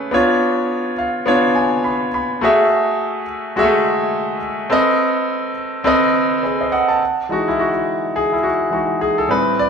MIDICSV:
0, 0, Header, 1, 2, 480
1, 0, Start_track
1, 0, Tempo, 573066
1, 111, Time_signature, 4, 2, 24, 8
1, 8121, End_track
2, 0, Start_track
2, 0, Title_t, "Grand piano"
2, 0, Program_c, 0, 0
2, 0, Control_c, 0, 64, 127
2, 0, Note_on_c, 0, 57, 88
2, 0, Note_on_c, 0, 61, 76
2, 0, Note_on_c, 0, 68, 83
2, 0, Note_on_c, 0, 71, 104
2, 95, Note_on_c, 0, 59, 86
2, 105, Note_on_c, 0, 62, 77
2, 115, Note_on_c, 0, 65, 86
2, 119, Note_on_c, 0, 73, 96
2, 123, Control_c, 0, 64, 0
2, 125, Note_off_c, 0, 57, 0
2, 126, Note_off_c, 0, 61, 0
2, 126, Note_off_c, 0, 68, 0
2, 128, Note_off_c, 0, 71, 0
2, 251, Control_c, 0, 64, 127
2, 770, Note_off_c, 0, 59, 0
2, 775, Note_off_c, 0, 62, 0
2, 780, Note_off_c, 0, 65, 0
2, 782, Note_off_c, 0, 73, 0
2, 825, Note_on_c, 0, 77, 70
2, 1048, Note_off_c, 0, 77, 0
2, 1053, Note_on_c, 0, 59, 90
2, 1060, Note_on_c, 0, 77, 78
2, 1061, Note_on_c, 0, 62, 80
2, 1065, Note_on_c, 0, 65, 82
2, 1072, Note_on_c, 0, 73, 100
2, 1287, Note_off_c, 0, 77, 0
2, 1297, Note_on_c, 0, 80, 67
2, 1525, Note_off_c, 0, 80, 0
2, 1543, Note_on_c, 0, 83, 65
2, 1728, Note_off_c, 0, 59, 0
2, 1732, Note_off_c, 0, 62, 0
2, 1734, Note_off_c, 0, 65, 0
2, 1738, Note_off_c, 0, 73, 0
2, 1769, Note_off_c, 0, 83, 0
2, 1794, Note_on_c, 0, 83, 73
2, 2014, Note_off_c, 0, 83, 0
2, 2022, Note_on_c, 0, 57, 92
2, 2035, Note_on_c, 0, 66, 84
2, 2038, Control_c, 0, 64, 0
2, 2040, Note_on_c, 0, 68, 86
2, 2048, Note_on_c, 0, 76, 94
2, 2199, Control_c, 0, 64, 127
2, 2692, Note_off_c, 0, 57, 0
2, 2698, Note_off_c, 0, 66, 0
2, 2701, Note_off_c, 0, 68, 0
2, 2705, Note_off_c, 0, 76, 0
2, 2983, Note_on_c, 0, 56, 68
2, 2988, Note_on_c, 0, 66, 88
2, 2998, Note_on_c, 0, 68, 83
2, 3007, Note_on_c, 0, 76, 97
2, 3038, Note_on_c, 0, 57, 93
2, 3047, Note_off_c, 0, 56, 0
2, 3654, Note_off_c, 0, 66, 0
2, 3659, Note_off_c, 0, 68, 0
2, 3664, Note_off_c, 0, 76, 0
2, 3679, Note_off_c, 0, 57, 0
2, 3934, Note_on_c, 0, 60, 90
2, 3940, Note_on_c, 0, 69, 80
2, 3947, Note_on_c, 0, 71, 75
2, 3957, Control_c, 0, 64, 0
2, 3957, Note_on_c, 0, 75, 98
2, 4091, Control_c, 0, 64, 127
2, 4607, Note_off_c, 0, 60, 0
2, 4610, Note_off_c, 0, 69, 0
2, 4614, Note_off_c, 0, 71, 0
2, 4619, Note_off_c, 0, 75, 0
2, 4894, Note_on_c, 0, 60, 95
2, 4899, Note_on_c, 0, 69, 80
2, 4906, Note_on_c, 0, 71, 84
2, 4917, Note_on_c, 0, 75, 97
2, 5373, Note_off_c, 0, 71, 0
2, 5381, Note_off_c, 0, 69, 0
2, 5386, Note_on_c, 0, 71, 56
2, 5390, Note_on_c, 0, 68, 53
2, 5391, Note_off_c, 0, 75, 0
2, 5517, Note_off_c, 0, 71, 0
2, 5519, Note_off_c, 0, 68, 0
2, 5532, Note_on_c, 0, 75, 63
2, 5537, Note_on_c, 0, 72, 54
2, 5567, Note_off_c, 0, 60, 0
2, 5623, Note_off_c, 0, 75, 0
2, 5627, Note_off_c, 0, 72, 0
2, 5630, Note_on_c, 0, 78, 73
2, 5635, Note_on_c, 0, 75, 59
2, 5759, Note_off_c, 0, 78, 0
2, 5762, Note_off_c, 0, 75, 0
2, 5766, Note_on_c, 0, 81, 69
2, 5772, Note_on_c, 0, 78, 54
2, 5875, Control_c, 0, 64, 0
2, 5993, Note_off_c, 0, 81, 0
2, 5996, Note_off_c, 0, 78, 0
2, 6015, Control_c, 0, 64, 127
2, 6107, Note_on_c, 0, 52, 49
2, 6112, Note_on_c, 0, 56, 49
2, 6116, Note_on_c, 0, 63, 55
2, 6132, Note_on_c, 0, 66, 75
2, 6249, Note_off_c, 0, 66, 0
2, 6265, Note_on_c, 0, 64, 75
2, 6358, Note_off_c, 0, 64, 0
2, 6362, Note_on_c, 0, 66, 72
2, 6440, Note_off_c, 0, 52, 0
2, 6443, Note_off_c, 0, 56, 0
2, 6445, Note_off_c, 0, 63, 0
2, 6834, Note_on_c, 0, 68, 84
2, 6848, Note_off_c, 0, 66, 0
2, 6973, Note_off_c, 0, 68, 0
2, 6973, Note_on_c, 0, 64, 70
2, 7062, Note_on_c, 0, 66, 70
2, 7073, Note_off_c, 0, 64, 0
2, 7117, Note_off_c, 0, 66, 0
2, 7291, Note_on_c, 0, 52, 43
2, 7296, Note_on_c, 0, 56, 39
2, 7302, Note_on_c, 0, 63, 45
2, 7310, Note_on_c, 0, 66, 68
2, 7514, Note_off_c, 0, 52, 0
2, 7517, Note_off_c, 0, 56, 0
2, 7520, Note_off_c, 0, 63, 0
2, 7549, Note_on_c, 0, 68, 83
2, 7556, Note_off_c, 0, 66, 0
2, 7678, Note_off_c, 0, 68, 0
2, 7690, Note_on_c, 0, 69, 78
2, 7774, Note_on_c, 0, 45, 57
2, 7777, Note_on_c, 0, 55, 47
2, 7782, Note_on_c, 0, 60, 64
2, 7792, Note_off_c, 0, 69, 0
2, 7796, Note_on_c, 0, 71, 90
2, 7798, Control_c, 0, 64, 0
2, 7958, Control_c, 0, 64, 127
2, 8036, Note_on_c, 0, 74, 84
2, 8039, Note_off_c, 0, 71, 0
2, 8121, Note_off_c, 0, 45, 0
2, 8121, Note_off_c, 0, 55, 0
2, 8121, Note_off_c, 0, 60, 0
2, 8121, Note_off_c, 0, 74, 0
2, 8121, End_track
0, 0, End_of_file